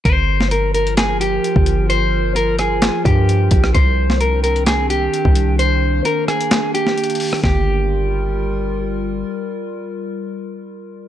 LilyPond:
<<
  \new Staff \with { instrumentName = "Clean electric guitar" } { \time 4/4 \key g \phrygian \tempo 4 = 130 c''4 bes'8 bes'8 aes'8 g'4. | c''4 bes'8 aes'4 g'4. | c''4 bes'8 bes'8 aes'8 g'4. | c''4 bes'8 aes'4 g'4. |
g'2. r4 | r1 | }
  \new Staff \with { instrumentName = "Ambient pad" } { \time 4/4 \key g \phrygian << { <f bes'>1~ | <f bes'>1 | <ees d'>1~ | <ees d'>1 |
<g f' bes'>1~ | <g f' bes'>1 | } \\ { f'1~ | f'1 | c'1 | bes1 |
r1 | r1 | } >> }
  \new Staff \with { instrumentName = "808-style bass" } { \clef bass \time 4/4 \key g \phrygian g,,2. r16 g,,8.~ | g,,2~ g,,16 r16 g,4 bes,,8 | c,2. r16 c,8.~ | c,4 r2. |
g,,1 | r1 | }
  \new DrumStaff \with { instrumentName = "Drums" } \drummode { \time 4/4 <hh bd>8. sn16 hh8 hh16 hh16 <hc hh sn>8 hh8 hh16 bd16 hh8 | hh4 hh8 <hh ss>8 <hc hh sn>8 <hh bd>8 hh8 <hh bd>16 ss16 | <hh bd>8. sn16 hh8 hh16 hh16 <hc hh sn>8 hh8 hh16 bd16 hh8 | hh4 hh8 <hh ss>16 hh16 <hc hh sn>8 hh16 sn16 hh32 hh32 hh32 hh32 hho16 ss16 |
<bd sn>4 r4 r4 r4 | r4 r4 r4 r4 | }
>>